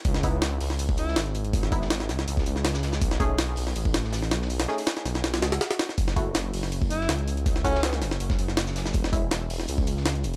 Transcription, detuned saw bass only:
\new Staff \with { instrumentName = "Detuned saw bass" } { \clef bass \time 4/4 \key fis \dorian \tempo 4 = 162 cis,4. cis,4. gis,,4~ | gis,,4. cis,8 cis,8 cis,4. | b,,4. b,,8 a,,4. b,,8~ | b,,8 r4 b,,4 cis,8 r4 |
fis,,4. fis,,4. cis,4~ | cis,4. fis,,8 fis,,8 fis,,4. | e,,4. e,,8 cis,4. e,,8 | }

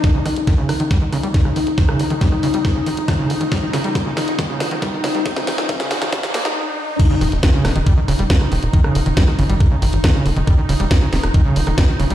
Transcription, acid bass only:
\new Staff \with { instrumentName = "Acid bass" } { \clef bass \time 4/4 \tempo 4 = 138 r16 des16 ees16 r16 ees16 des16 ees16 ees16 g16 ees16 des16 g16 r16 des16 ees16 r16 | ees16 des16 ees16 ees16 g16 ees16 des16 g16 r16 des16 ees16 r16 ees16 des16 ees16 ees16 | g16 ees16 des16 g16 r16 des16 ees16 r16 ees16 des16 ees16 ees16 g16 ees16 des16 g16 | r16 des16 ees16 r16 ees16 des16 ees16 ees16 g16 ees16 bes16 ees'16 r4 |
r16 des16 ees16 r16 ees16 des16 ees16 ees16 g16 ees16 des16 g16 r16 des16 ees16 r16 | ees16 des16 ees16 ees16 g16 ees16 des16 g16 r16 des16 ees16 r16 ees16 des16 ees16 ees16 | g16 ees16 des16 g16 r16 des16 ees16 r16 ees16 des16 ees16 ees16 g16 ees16 des16 g16 | }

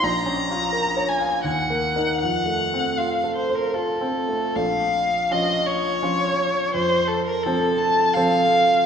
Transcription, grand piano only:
\new Staff \with { instrumentName = "Grand piano" } { \time 3/4 \key bes \minor \tempo 4 = 82 \tuplet 3/2 { bes,,8 des'8 f'8 bes'8 des''8 f''8 ees,8 bes8 <ees' bes'>8 } | \tuplet 3/2 { f,8 a8 c'8 f'8 a'8 c''8 f'8 c'8 a8 } | bes,,4 <f des' f'>4 <f des' f'>4 | f,4 <f c' a'>4 <f c' a'>4 | }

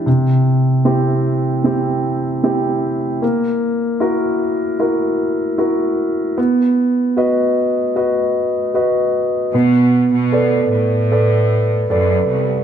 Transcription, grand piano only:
\new Staff \with { instrumentName = "Grand piano" } { \time 4/4 \key b \phrygian \tempo 4 = 76 c4 <c' e' g'>4 <c' e' g'>4 <c' e' g'>4 | ais4 <e' fis' ais'>4 <e' fis' ais'>4 <e' fis' ais'>4 | b4 <fis' b' dis''>4 <fis' b' dis''>4 <fis' b' dis''>4 | b4 <a' b' d''>4 <a' b' d''>4 <a' b' d''>4 | }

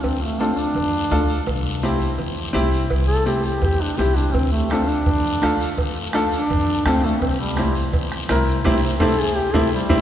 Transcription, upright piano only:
\new Staff \with { instrumentName = "Upright piano" } { \time 4/4 \key c \mixolydian \tempo 4 = 167 r4 <d' f' a'>8 r4. <d' f' a'>8 r8 | r4 <c' e' g'>8 r4. <c' e' g'>8 r8 | r4 <c' e' g'>8 r4. <c' e' g'>8 r8 | r4 <d' f' a'>8 r4. <d' f' a'>8 r8 |
r4 <d' f' a'>8 r4. <d' f' a'>8 r8 | r4 <c' e' g'>8 r4. <c' e' bes'>8 r8 | <c' e' g'>8 r8 <c' e' g'>8 r4 <c' e' g'>8 r8 <c' e' g'>8 | }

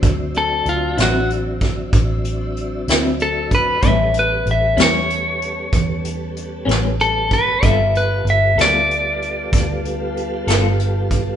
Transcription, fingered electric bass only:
\new Staff \with { instrumentName = "Fingered electric bass" } { \clef bass \time 12/8 \key a \dorian \tempo 4. = 63 d,4 d,8 a,,4. a,,4. d,4. | a,,4 a,,8 e,4. e,4. a,,4. | g,,4 g,,8 d,4. d,4. g,,4. | }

